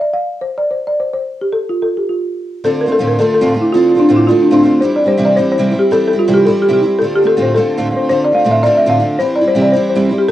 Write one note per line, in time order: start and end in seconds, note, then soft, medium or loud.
0.01 0.14 D5 medium
0.13 0.41 F5 medium
0.41 0.60 C5 medium
0.58 0.70 D5 medium
0.71 0.88 C5 medium
0.87 1.00 D5 medium
1.00 1.12 C5 medium
1.13 1.43 C5 medium
1.41 1.55 G4 medium
1.53 1.60 A4 medium
1.69 1.81 F4 medium
1.82 1.99 A4 medium
1.97 2.10 G4 medium
2.09 2.50 F4 medium
2.64 2.86 D3 medium
2.64 2.86 A3 medium
2.64 2.87 C4 medium
2.64 2.85 F4 medium
2.64 2.79 A4 medium
2.81 2.93 A#4 medium
2.86 3.00 D3 soft
2.86 2.99 A3 soft
2.86 3.00 C4 soft
2.86 2.98 F4 soft
2.92 3.08 A4 loud
2.99 3.20 D2 medium
2.99 3.20 A2 medium
2.99 3.18 D3 medium
2.99 3.20 A3 medium
2.99 3.19 C4 medium
2.99 3.19 F4 medium
3.08 3.20 A#4 medium
3.19 3.41 D3 medium
3.19 3.41 A3 medium
3.19 3.41 C4 medium
3.19 3.40 F4 medium
3.19 3.33 A4 loud
3.34 3.63 A4 medium
3.41 3.56 D2 medium
3.41 3.56 A2 medium
3.41 3.55 D3 medium
3.41 3.55 A3 medium
3.41 3.55 C4 medium
3.41 3.53 F4 medium
3.55 3.73 D3 soft
3.55 3.75 A3 soft
3.55 3.74 C4 soft
3.55 3.74 F4 medium
3.61 3.73 E4 medium
3.73 3.96 D3 medium
3.73 3.96 C4 medium
3.73 3.88 F4 medium
3.77 3.95 A3 medium
3.77 3.94 F4 medium
3.89 4.01 F4 medium
3.95 4.09 D3 soft
3.95 4.08 A3 soft
3.95 4.09 C4 soft
3.95 4.07 F4 soft
4.00 4.17 D4 medium
4.09 4.29 D2 medium
4.09 4.29 A2 medium
4.09 4.27 D3 medium
4.09 4.29 A3 medium
4.09 4.29 C4 medium
4.09 4.28 F4 medium
4.16 4.27 E4 medium
4.27 4.50 D3 medium
4.27 4.50 A3 medium
4.27 4.51 C4 medium
4.27 4.44 F4 loud
4.31 4.50 F4 medium
4.43 4.53 D4 medium
4.51 4.65 D2 medium
4.51 4.65 A2 medium
4.51 4.65 D3 medium
4.51 4.63 A3 medium
4.51 4.64 C4 medium
4.51 4.80 D4 medium
4.51 4.62 F4 medium
4.63 4.81 D3 soft
4.63 4.84 A3 medium
4.63 4.83 C4 soft
4.63 4.83 F4 soft
4.81 5.04 E3 medium
4.81 5.05 G3 medium
4.81 5.04 C4 medium
4.81 4.96 C5 loud
4.85 5.02 E4 medium
4.96 5.09 D5 medium
5.04 5.17 G3 soft
5.04 5.17 C4 soft
5.04 5.16 E4 soft
5.04 5.25 C5 loud
5.17 5.39 C3 medium
5.17 5.36 E3 medium
5.17 5.37 G3 medium
5.17 5.38 C4 medium
5.17 5.37 E4 medium
5.25 5.36 D5 loud
5.36 5.58 E3 medium
5.36 5.58 G3 medium
5.36 5.58 C4 medium
5.36 5.57 E4 medium
5.36 5.51 C5 loud
5.52 5.81 C5 medium
5.58 5.73 C3 medium
5.58 5.73 E3 medium
5.58 5.73 G3 medium
5.58 5.72 C4 medium
5.58 5.70 E4 medium
5.71 5.91 G3 soft
5.71 5.92 C4 medium
5.71 5.92 E4 medium
5.79 5.92 G4 medium
5.91 6.13 E3 medium
5.91 6.14 G3 medium
5.91 6.13 C4 medium
5.91 6.12 E4 medium
5.91 6.06 A4 loud
6.08 6.20 A4 medium
6.13 6.27 G3 soft
6.13 6.27 C4 soft
6.13 6.26 E4 medium
6.19 6.35 F4 medium
6.28 6.48 C3 medium
6.28 6.45 E3 medium
6.28 6.47 G3 medium
6.28 6.47 C4 medium
6.28 6.47 E4 medium
6.34 6.46 G4 medium
6.45 6.68 E3 medium
6.45 6.68 G3 medium
6.45 6.68 C4 medium
6.45 6.62 A4 medium
6.50 6.67 E4 medium
6.62 6.72 G4 medium
6.68 6.83 C3 medium
6.68 6.83 E3 medium
6.68 6.83 G3 medium
6.68 6.82 C4 medium
6.68 6.81 E4 medium
6.73 7.02 G4 medium
6.82 7.03 G3 soft
6.82 7.02 C4 soft
6.82 7.02 E4 medium
6.99 7.23 D3 medium
6.99 7.16 A4 medium
7.03 7.23 A3 medium
7.03 7.22 C4 medium
7.03 7.21 F4 medium
7.15 7.27 G4 medium
7.22 7.37 D3 soft
7.22 7.37 A3 soft
7.22 7.36 C4 soft
7.22 7.35 F4 soft
7.27 7.44 A4 loud
7.37 7.57 D2 medium
7.37 7.57 A2 medium
7.37 7.55 D3 medium
7.37 7.56 A3 medium
7.37 7.57 C4 medium
7.37 7.56 F4 medium
7.42 7.54 C5 medium
7.55 7.77 D3 medium
7.55 7.77 A3 medium
7.55 7.77 C4 medium
7.55 8.00 A4 loud
7.59 7.76 F4 medium
7.77 7.92 D2 medium
7.77 7.92 A2 medium
7.77 7.92 D3 medium
7.77 7.92 A3 medium
7.77 7.91 C4 medium
7.77 7.89 F4 medium
7.91 8.08 D3 soft
7.91 8.09 A3 soft
7.91 8.10 C4 medium
7.91 8.11 F4 medium
7.96 8.08 C5 medium
8.09 8.32 D3 medium
8.09 8.32 A3 medium
8.09 8.32 C4 medium
8.09 8.31 F4 medium
8.09 8.26 C5 loud
8.24 8.38 D5 loud
8.32 8.45 D3 soft
8.32 8.45 A3 soft
8.32 8.44 C4 soft
8.32 8.43 F4 medium
8.32 8.53 F5 loud
8.44 8.66 D2 medium
8.44 8.66 A2 medium
8.44 8.62 D3 medium
8.44 8.64 A3 medium
8.44 8.65 C4 medium
8.44 8.65 F4 medium
8.51 8.63 E5 loud
8.63 8.86 D3 medium
8.63 8.86 A3 medium
8.63 8.85 C4 medium
8.63 8.85 F4 medium
8.63 8.74 D5 loud
8.75 8.80 D5 medium
8.75 8.91 E5 loud
8.86 9.01 D2 medium
8.86 9.01 A2 medium
8.86 9.01 D3 medium
8.86 9.01 A3 medium
8.86 8.99 C4 medium
8.86 8.98 F4 medium
8.86 9.20 F5 loud
9.00 9.19 D3 soft
9.00 9.20 A3 soft
9.00 9.20 C4 soft
9.00 9.20 F4 medium
9.19 9.42 E3 medium
9.19 9.42 G3 medium
9.19 9.42 C4 medium
9.19 9.40 E4 medium
9.19 9.34 C5 loud
9.36 9.48 D5 medium
9.41 9.55 G3 soft
9.41 9.55 C4 soft
9.41 9.54 E4 medium
9.48 9.63 C5 loud
9.55 9.76 C3 medium
9.55 9.72 E3 medium
9.55 9.74 G3 medium
9.55 9.75 C4 medium
9.55 9.75 E4 medium
9.62 9.75 D5 medium
9.72 9.96 E3 medium
9.72 9.95 G3 medium
9.72 9.88 C5 loud
9.76 9.95 C4 medium
9.76 9.94 E4 medium
9.90 10.19 C5 medium
9.95 10.11 C3 medium
9.95 10.11 E3 medium
9.95 10.10 G3 medium
9.95 10.10 C4 medium
9.95 10.08 E4 medium
10.09 10.30 G3 soft
10.09 10.31 C4 soft
10.09 10.30 E4 soft
10.18 10.29 G4 medium